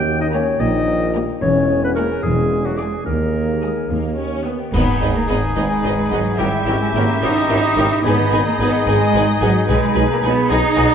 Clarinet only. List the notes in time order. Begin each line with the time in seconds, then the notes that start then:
Already playing: G5
0.21 D#5
0.34 C#5
0.60 D#5
1.42 C#5
1.84 B4
1.95 A#4
2.23 G#4
2.66 F#4
2.78 G#4
3.06 A#4
4.74 D#4
6.38 E4
8.05 D#4